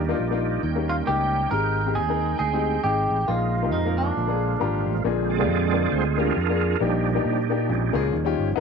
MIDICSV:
0, 0, Header, 1, 5, 480
1, 0, Start_track
1, 0, Tempo, 440852
1, 1653, Time_signature, 4, 2, 24, 8
1, 9365, End_track
2, 0, Start_track
2, 0, Title_t, "Clean electric guitar"
2, 0, Program_c, 0, 27
2, 974, Note_on_c, 0, 65, 84
2, 1028, Note_off_c, 0, 65, 0
2, 1167, Note_on_c, 0, 67, 94
2, 1638, Note_off_c, 0, 67, 0
2, 1643, Note_on_c, 0, 70, 100
2, 2121, Note_off_c, 0, 70, 0
2, 2126, Note_on_c, 0, 68, 93
2, 2588, Note_off_c, 0, 68, 0
2, 2601, Note_on_c, 0, 68, 89
2, 3083, Note_off_c, 0, 68, 0
2, 3087, Note_on_c, 0, 67, 88
2, 3571, Note_on_c, 0, 65, 82
2, 3586, Note_off_c, 0, 67, 0
2, 4020, Note_off_c, 0, 65, 0
2, 4054, Note_on_c, 0, 63, 71
2, 4329, Note_off_c, 0, 63, 0
2, 4333, Note_on_c, 0, 62, 76
2, 5251, Note_off_c, 0, 62, 0
2, 9365, End_track
3, 0, Start_track
3, 0, Title_t, "Grand piano"
3, 0, Program_c, 1, 0
3, 0, Note_on_c, 1, 51, 64
3, 95, Note_on_c, 1, 58, 85
3, 99, Note_on_c, 1, 62, 78
3, 108, Note_on_c, 1, 63, 73
3, 113, Note_on_c, 1, 65, 88
3, 245, Note_off_c, 1, 58, 0
3, 247, Note_off_c, 1, 62, 0
3, 252, Note_off_c, 1, 63, 0
3, 254, Note_off_c, 1, 65, 0
3, 336, Note_on_c, 1, 58, 76
3, 342, Note_on_c, 1, 62, 73
3, 346, Note_on_c, 1, 63, 67
3, 353, Note_on_c, 1, 65, 88
3, 447, Note_off_c, 1, 51, 0
3, 644, Note_off_c, 1, 58, 0
3, 647, Note_off_c, 1, 62, 0
3, 650, Note_off_c, 1, 63, 0
3, 653, Note_off_c, 1, 65, 0
3, 690, Note_on_c, 1, 51, 73
3, 824, Note_on_c, 1, 58, 70
3, 828, Note_on_c, 1, 61, 65
3, 834, Note_on_c, 1, 63, 57
3, 840, Note_on_c, 1, 67, 71
3, 1064, Note_off_c, 1, 58, 0
3, 1066, Note_off_c, 1, 61, 0
3, 1068, Note_off_c, 1, 63, 0
3, 1072, Note_off_c, 1, 67, 0
3, 1161, Note_on_c, 1, 58, 60
3, 1170, Note_on_c, 1, 61, 59
3, 1173, Note_on_c, 1, 63, 59
3, 1180, Note_on_c, 1, 67, 65
3, 1408, Note_off_c, 1, 51, 0
3, 1508, Note_off_c, 1, 58, 0
3, 1512, Note_off_c, 1, 61, 0
3, 1514, Note_off_c, 1, 63, 0
3, 1518, Note_off_c, 1, 67, 0
3, 1640, Note_on_c, 1, 56, 65
3, 1649, Note_on_c, 1, 60, 57
3, 1650, Note_on_c, 1, 44, 58
3, 1652, Note_on_c, 1, 63, 53
3, 1659, Note_on_c, 1, 67, 68
3, 1921, Note_off_c, 1, 56, 0
3, 1925, Note_off_c, 1, 60, 0
3, 1927, Note_off_c, 1, 63, 0
3, 1930, Note_off_c, 1, 67, 0
3, 2025, Note_on_c, 1, 56, 67
3, 2030, Note_on_c, 1, 60, 62
3, 2036, Note_on_c, 1, 63, 60
3, 2042, Note_on_c, 1, 67, 76
3, 2172, Note_off_c, 1, 56, 0
3, 2175, Note_off_c, 1, 60, 0
3, 2177, Note_off_c, 1, 63, 0
3, 2181, Note_off_c, 1, 67, 0
3, 2270, Note_on_c, 1, 56, 70
3, 2271, Note_on_c, 1, 60, 54
3, 2281, Note_on_c, 1, 63, 60
3, 2286, Note_on_c, 1, 70, 77
3, 2369, Note_off_c, 1, 44, 0
3, 2573, Note_off_c, 1, 56, 0
3, 2574, Note_off_c, 1, 60, 0
3, 2579, Note_off_c, 1, 63, 0
3, 2581, Note_off_c, 1, 70, 0
3, 2753, Note_on_c, 1, 56, 71
3, 2758, Note_on_c, 1, 60, 62
3, 2762, Note_on_c, 1, 63, 63
3, 2771, Note_on_c, 1, 67, 70
3, 2990, Note_off_c, 1, 56, 0
3, 2992, Note_off_c, 1, 60, 0
3, 2994, Note_off_c, 1, 63, 0
3, 2999, Note_off_c, 1, 67, 0
3, 3088, Note_on_c, 1, 56, 72
3, 3095, Note_on_c, 1, 60, 63
3, 3098, Note_on_c, 1, 63, 65
3, 3108, Note_on_c, 1, 68, 74
3, 3433, Note_off_c, 1, 56, 0
3, 3436, Note_off_c, 1, 60, 0
3, 3438, Note_off_c, 1, 63, 0
3, 3443, Note_off_c, 1, 68, 0
3, 3569, Note_on_c, 1, 58, 65
3, 3571, Note_on_c, 1, 63, 58
3, 3575, Note_on_c, 1, 46, 58
3, 3577, Note_on_c, 1, 65, 58
3, 3588, Note_on_c, 1, 68, 65
3, 3847, Note_off_c, 1, 58, 0
3, 3848, Note_off_c, 1, 63, 0
3, 3851, Note_off_c, 1, 65, 0
3, 3856, Note_off_c, 1, 68, 0
3, 3947, Note_on_c, 1, 58, 70
3, 3956, Note_on_c, 1, 63, 68
3, 3961, Note_on_c, 1, 65, 66
3, 3970, Note_on_c, 1, 67, 74
3, 4095, Note_off_c, 1, 58, 0
3, 4099, Note_off_c, 1, 63, 0
3, 4102, Note_off_c, 1, 65, 0
3, 4106, Note_off_c, 1, 67, 0
3, 4192, Note_on_c, 1, 58, 64
3, 4196, Note_on_c, 1, 63, 59
3, 4203, Note_on_c, 1, 65, 55
3, 4208, Note_on_c, 1, 70, 76
3, 4293, Note_off_c, 1, 46, 0
3, 4495, Note_off_c, 1, 58, 0
3, 4497, Note_off_c, 1, 63, 0
3, 4501, Note_off_c, 1, 65, 0
3, 4503, Note_off_c, 1, 70, 0
3, 4539, Note_on_c, 1, 46, 63
3, 4656, Note_on_c, 1, 58, 68
3, 4667, Note_on_c, 1, 62, 66
3, 4671, Note_on_c, 1, 65, 59
3, 4677, Note_on_c, 1, 68, 80
3, 4902, Note_off_c, 1, 58, 0
3, 4908, Note_off_c, 1, 62, 0
3, 4909, Note_off_c, 1, 65, 0
3, 4912, Note_off_c, 1, 68, 0
3, 5007, Note_on_c, 1, 58, 74
3, 5013, Note_on_c, 1, 62, 71
3, 5018, Note_on_c, 1, 82, 64
3, 5020, Note_on_c, 1, 65, 77
3, 5025, Note_on_c, 1, 67, 87
3, 5254, Note_off_c, 1, 46, 0
3, 5353, Note_off_c, 1, 58, 0
3, 5356, Note_off_c, 1, 62, 0
3, 5359, Note_off_c, 1, 65, 0
3, 5361, Note_off_c, 1, 67, 0
3, 5463, Note_off_c, 1, 82, 0
3, 5492, Note_on_c, 1, 58, 78
3, 5498, Note_on_c, 1, 62, 77
3, 5499, Note_on_c, 1, 46, 67
3, 5505, Note_on_c, 1, 65, 73
3, 5511, Note_on_c, 1, 68, 86
3, 5768, Note_off_c, 1, 58, 0
3, 5771, Note_off_c, 1, 62, 0
3, 5774, Note_off_c, 1, 65, 0
3, 5778, Note_off_c, 1, 68, 0
3, 5870, Note_on_c, 1, 58, 66
3, 5876, Note_on_c, 1, 62, 66
3, 5885, Note_on_c, 1, 65, 64
3, 5890, Note_on_c, 1, 67, 77
3, 6107, Note_off_c, 1, 58, 0
3, 6110, Note_off_c, 1, 62, 0
3, 6114, Note_off_c, 1, 65, 0
3, 6117, Note_off_c, 1, 67, 0
3, 6213, Note_off_c, 1, 46, 0
3, 6242, Note_on_c, 1, 58, 66
3, 6247, Note_on_c, 1, 62, 66
3, 6254, Note_on_c, 1, 65, 64
3, 6261, Note_on_c, 1, 68, 70
3, 6534, Note_off_c, 1, 58, 0
3, 6536, Note_off_c, 1, 62, 0
3, 6540, Note_off_c, 1, 65, 0
3, 6543, Note_off_c, 1, 68, 0
3, 6723, Note_on_c, 1, 58, 75
3, 6727, Note_on_c, 1, 62, 65
3, 6737, Note_on_c, 1, 65, 63
3, 6742, Note_on_c, 1, 67, 76
3, 6924, Note_off_c, 1, 58, 0
3, 6926, Note_off_c, 1, 62, 0
3, 6931, Note_off_c, 1, 65, 0
3, 6934, Note_off_c, 1, 67, 0
3, 7070, Note_on_c, 1, 58, 64
3, 7077, Note_on_c, 1, 62, 61
3, 7079, Note_on_c, 1, 65, 66
3, 7088, Note_on_c, 1, 68, 82
3, 7307, Note_off_c, 1, 58, 0
3, 7311, Note_off_c, 1, 62, 0
3, 7312, Note_off_c, 1, 65, 0
3, 7316, Note_off_c, 1, 68, 0
3, 7409, Note_on_c, 1, 58, 72
3, 7415, Note_on_c, 1, 62, 63
3, 7420, Note_on_c, 1, 46, 65
3, 7426, Note_on_c, 1, 63, 64
3, 7429, Note_on_c, 1, 67, 81
3, 7684, Note_off_c, 1, 58, 0
3, 7687, Note_off_c, 1, 62, 0
3, 7693, Note_off_c, 1, 63, 0
3, 7694, Note_off_c, 1, 67, 0
3, 7785, Note_on_c, 1, 58, 71
3, 7791, Note_on_c, 1, 62, 70
3, 7795, Note_on_c, 1, 63, 74
3, 7800, Note_on_c, 1, 67, 79
3, 8022, Note_off_c, 1, 58, 0
3, 8025, Note_off_c, 1, 62, 0
3, 8027, Note_off_c, 1, 63, 0
3, 8030, Note_off_c, 1, 67, 0
3, 8131, Note_off_c, 1, 46, 0
3, 8165, Note_on_c, 1, 58, 69
3, 8167, Note_on_c, 1, 62, 68
3, 8175, Note_on_c, 1, 63, 61
3, 8183, Note_on_c, 1, 67, 79
3, 8368, Note_off_c, 1, 58, 0
3, 8369, Note_off_c, 1, 62, 0
3, 8373, Note_off_c, 1, 63, 0
3, 8373, Note_on_c, 1, 46, 70
3, 8377, Note_off_c, 1, 67, 0
3, 8636, Note_on_c, 1, 58, 81
3, 8647, Note_on_c, 1, 61, 81
3, 8648, Note_on_c, 1, 65, 78
3, 8658, Note_on_c, 1, 68, 97
3, 8817, Note_off_c, 1, 46, 0
3, 8839, Note_off_c, 1, 58, 0
3, 8844, Note_off_c, 1, 61, 0
3, 8844, Note_off_c, 1, 65, 0
3, 8846, Note_on_c, 1, 51, 75
3, 8850, Note_off_c, 1, 68, 0
3, 8981, Note_on_c, 1, 61, 80
3, 8985, Note_on_c, 1, 63, 81
3, 8990, Note_on_c, 1, 65, 74
3, 8996, Note_on_c, 1, 67, 98
3, 9220, Note_off_c, 1, 61, 0
3, 9222, Note_off_c, 1, 63, 0
3, 9225, Note_off_c, 1, 65, 0
3, 9228, Note_off_c, 1, 67, 0
3, 9293, Note_off_c, 1, 51, 0
3, 9316, Note_on_c, 1, 59, 89
3, 9326, Note_on_c, 1, 63, 82
3, 9330, Note_on_c, 1, 44, 68
3, 9365, Note_off_c, 1, 44, 0
3, 9365, Note_off_c, 1, 59, 0
3, 9365, Note_off_c, 1, 63, 0
3, 9365, End_track
4, 0, Start_track
4, 0, Title_t, "Tonewheel organ"
4, 0, Program_c, 2, 16
4, 0, Note_on_c, 2, 55, 54
4, 0, Note_on_c, 2, 58, 59
4, 0, Note_on_c, 2, 62, 55
4, 0, Note_on_c, 2, 63, 58
4, 0, Note_on_c, 2, 67, 71
4, 676, Note_off_c, 2, 67, 0
4, 677, Note_off_c, 2, 55, 0
4, 677, Note_off_c, 2, 62, 0
4, 688, Note_on_c, 2, 79, 70
4, 689, Note_on_c, 2, 61, 59
4, 694, Note_on_c, 2, 55, 58
4, 1609, Note_off_c, 2, 58, 0
4, 1642, Note_off_c, 2, 61, 0
4, 1645, Note_off_c, 2, 55, 0
4, 1654, Note_on_c, 2, 56, 58
4, 1657, Note_on_c, 2, 60, 59
4, 3545, Note_off_c, 2, 79, 0
4, 3557, Note_off_c, 2, 56, 0
4, 3559, Note_off_c, 2, 60, 0
4, 3576, Note_on_c, 2, 53, 56
4, 3576, Note_on_c, 2, 56, 61
4, 3577, Note_on_c, 2, 65, 64
4, 3581, Note_on_c, 2, 58, 56
4, 4490, Note_off_c, 2, 63, 0
4, 4536, Note_on_c, 2, 50, 61
4, 5470, Note_off_c, 2, 50, 0
4, 5477, Note_off_c, 2, 53, 0
4, 5477, Note_off_c, 2, 56, 0
4, 5478, Note_off_c, 2, 65, 0
4, 5480, Note_off_c, 2, 58, 0
4, 5483, Note_on_c, 2, 50, 52
4, 5498, Note_on_c, 2, 56, 52
4, 5503, Note_on_c, 2, 60, 59
4, 5770, Note_on_c, 2, 74, 117
4, 5778, Note_on_c, 2, 68, 77
4, 5782, Note_on_c, 2, 65, 73
4, 6443, Note_on_c, 2, 72, 102
4, 6445, Note_off_c, 2, 68, 0
4, 6451, Note_off_c, 2, 65, 0
4, 6458, Note_on_c, 2, 68, 74
4, 6464, Note_on_c, 2, 65, 78
4, 6473, Note_off_c, 2, 74, 0
4, 6571, Note_off_c, 2, 72, 0
4, 6737, Note_off_c, 2, 50, 0
4, 6737, Note_on_c, 2, 70, 100
4, 6739, Note_off_c, 2, 56, 0
4, 6739, Note_off_c, 2, 60, 0
4, 6742, Note_off_c, 2, 65, 0
4, 6750, Note_on_c, 2, 50, 50
4, 6752, Note_on_c, 2, 56, 43
4, 6752, Note_on_c, 2, 60, 52
4, 6755, Note_on_c, 2, 62, 66
4, 6755, Note_on_c, 2, 65, 70
4, 6923, Note_off_c, 2, 50, 0
4, 6924, Note_off_c, 2, 56, 0
4, 6924, Note_off_c, 2, 60, 0
4, 7371, Note_off_c, 2, 68, 0
4, 7380, Note_off_c, 2, 62, 0
4, 7380, Note_off_c, 2, 65, 0
4, 7408, Note_on_c, 2, 67, 92
4, 7419, Note_on_c, 2, 53, 62
4, 7426, Note_on_c, 2, 55, 52
4, 7431, Note_on_c, 2, 62, 64
4, 7435, Note_off_c, 2, 70, 0
4, 7437, Note_on_c, 2, 63, 58
4, 7856, Note_off_c, 2, 67, 0
4, 7890, Note_on_c, 2, 67, 79
4, 7899, Note_off_c, 2, 63, 0
4, 7900, Note_off_c, 2, 62, 0
4, 7912, Note_on_c, 2, 63, 56
4, 7913, Note_on_c, 2, 62, 51
4, 8137, Note_off_c, 2, 53, 0
4, 8140, Note_off_c, 2, 55, 0
4, 8374, Note_on_c, 2, 61, 56
4, 8380, Note_on_c, 2, 60, 67
4, 8381, Note_on_c, 2, 56, 54
4, 8713, Note_off_c, 2, 61, 0
4, 8717, Note_off_c, 2, 56, 0
4, 8717, Note_off_c, 2, 60, 0
4, 8805, Note_off_c, 2, 67, 0
4, 8816, Note_off_c, 2, 62, 0
4, 8816, Note_off_c, 2, 63, 0
4, 8844, Note_on_c, 2, 53, 55
4, 8850, Note_on_c, 2, 55, 49
4, 8856, Note_on_c, 2, 61, 59
4, 9302, Note_off_c, 2, 53, 0
4, 9305, Note_off_c, 2, 55, 0
4, 9308, Note_off_c, 2, 61, 0
4, 9365, End_track
5, 0, Start_track
5, 0, Title_t, "Fingered electric bass"
5, 0, Program_c, 3, 33
5, 0, Note_on_c, 3, 39, 89
5, 135, Note_off_c, 3, 39, 0
5, 209, Note_on_c, 3, 34, 77
5, 618, Note_off_c, 3, 34, 0
5, 687, Note_on_c, 3, 39, 85
5, 1097, Note_off_c, 3, 39, 0
5, 1174, Note_on_c, 3, 37, 81
5, 1582, Note_off_c, 3, 37, 0
5, 1649, Note_on_c, 3, 32, 95
5, 2129, Note_on_c, 3, 39, 81
5, 2146, Note_off_c, 3, 32, 0
5, 2540, Note_off_c, 3, 39, 0
5, 2611, Note_on_c, 3, 38, 82
5, 3021, Note_off_c, 3, 38, 0
5, 3092, Note_on_c, 3, 32, 78
5, 3331, Note_off_c, 3, 32, 0
5, 3375, Note_on_c, 3, 33, 77
5, 3546, Note_off_c, 3, 33, 0
5, 3575, Note_on_c, 3, 34, 90
5, 4059, Note_off_c, 3, 34, 0
5, 4059, Note_on_c, 3, 41, 73
5, 4466, Note_off_c, 3, 41, 0
5, 4542, Note_on_c, 3, 34, 92
5, 4948, Note_off_c, 3, 34, 0
5, 5020, Note_on_c, 3, 32, 76
5, 5257, Note_off_c, 3, 32, 0
5, 5296, Note_on_c, 3, 33, 84
5, 5466, Note_off_c, 3, 33, 0
5, 5495, Note_on_c, 3, 34, 98
5, 5967, Note_off_c, 3, 34, 0
5, 5967, Note_on_c, 3, 41, 77
5, 6378, Note_off_c, 3, 41, 0
5, 6450, Note_on_c, 3, 38, 88
5, 6860, Note_off_c, 3, 38, 0
5, 6932, Note_on_c, 3, 41, 82
5, 7340, Note_off_c, 3, 41, 0
5, 7414, Note_on_c, 3, 34, 108
5, 7821, Note_off_c, 3, 34, 0
5, 7892, Note_on_c, 3, 46, 91
5, 8374, Note_on_c, 3, 34, 91
5, 8390, Note_off_c, 3, 46, 0
5, 8610, Note_off_c, 3, 34, 0
5, 8649, Note_on_c, 3, 37, 93
5, 8819, Note_off_c, 3, 37, 0
5, 8843, Note_on_c, 3, 39, 104
5, 9083, Note_off_c, 3, 39, 0
5, 9129, Note_on_c, 3, 31, 92
5, 9299, Note_off_c, 3, 31, 0
5, 9365, End_track
0, 0, End_of_file